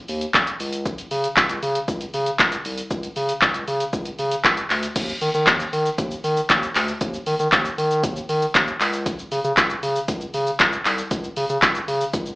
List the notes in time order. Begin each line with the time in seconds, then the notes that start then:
0.08 D#2, open hi-hat, shaker
0.21 closed hi-hat, shaker
0.34 D#1, kick, clap, shaker
0.47 closed hi-hat, shaker
0.60 C#2, open hi-hat, shaker
0.73 closed hi-hat, shaker
0.86 kick, shaker
0.98 closed hi-hat, shaker
1.11 C#3, open hi-hat, shaker
1.24 closed hi-hat, shaker
1.37 C#2, kick, clap, shaker
1.49 C#2, closed hi-hat, shaker
1.63 C#3, open hi-hat, shaker
1.75 closed hi-hat, shaker
1.88 C#2, kick, shaker
2.01 closed hi-hat, shaker
2.14 C#3, open hi-hat, shaker
2.26 closed hi-hat, shaker
2.39 C#2, kick, clap, shaker
2.52 closed hi-hat, shaker
2.65 C2, open hi-hat, shaker
2.78 closed hi-hat, shaker
2.90 C#2, kick, shaker
3.03 closed hi-hat, shaker
3.16 C#3, open hi-hat, shaker
3.29 closed hi-hat, shaker
3.42 C#2, kick, clap, shaker
3.54 C#2, closed hi-hat, shaker
3.68 C#3, open hi-hat, shaker
3.80 closed hi-hat, shaker
3.93 C#2, kick, shaker
4.05 closed hi-hat, shaker
4.19 C#3, open hi-hat, shaker
4.31 closed hi-hat, shaker
4.44 C#2, kick, clap, shaker
4.57 closed hi-hat, shaker
4.70 D2, clap, open hi-hat, shaker
4.83 closed hi-hat, shaker
4.96 D#2, kick, closed hi-hat, crash, shaker
5.09 shaker
5.21 D#3, open hi-hat, shaker
5.34 D#3, shaker
5.47 D#2, kick, clap, closed hi-hat, shaker
5.60 shaker
5.73 D#3, open hi-hat, shaker
5.86 shaker
5.98 D#2, kick, closed hi-hat, shaker
6.11 shaker
6.24 D#3, open hi-hat, shaker
6.37 shaker
6.50 D#2, kick, clap, closed hi-hat, shaker
6.63 shaker
6.75 D2, clap, open hi-hat, shaker
6.88 shaker
7.01 D#2, kick, closed hi-hat, shaker
7.14 shaker
7.26 D#3, open hi-hat, shaker
7.39 D#3, shaker
7.52 D#2, kick, clap, closed hi-hat, shaker
7.65 shaker
7.78 D#3, open hi-hat, shaker
7.91 shaker
8.03 D#2, kick, closed hi-hat, shaker
8.16 shaker
8.29 D#3, open hi-hat, shaker
8.42 shaker
8.55 D#2, kick, clap, closed hi-hat, shaker
8.68 shaker
8.80 C#2, clap, open hi-hat, shaker
8.93 shaker
9.06 kick, closed hi-hat, shaker
9.19 shaker
9.32 C#3, open hi-hat, shaker
9.44 C#3, shaker
9.57 C#2, kick, clap, closed hi-hat, shaker
9.70 shaker
9.83 C#3, open hi-hat, shaker
9.96 shaker
10.08 C#2, kick, closed hi-hat, shaker
10.21 shaker
10.34 C#3, open hi-hat, shaker
10.47 shaker
10.60 C#2, kick, clap, closed hi-hat, shaker
10.73 shaker
10.85 C2, clap, open hi-hat, shaker
10.98 shaker
11.11 C#2, kick, closed hi-hat, shaker
11.24 shaker
11.36 C#3, open hi-hat, shaker
11.49 C#3, shaker
11.62 C#2, kick, clap, closed hi-hat, shaker
11.75 shaker
11.88 C#3, open hi-hat, shaker
12.01 shaker
12.13 C#2, kick, closed hi-hat, shaker
12.26 shaker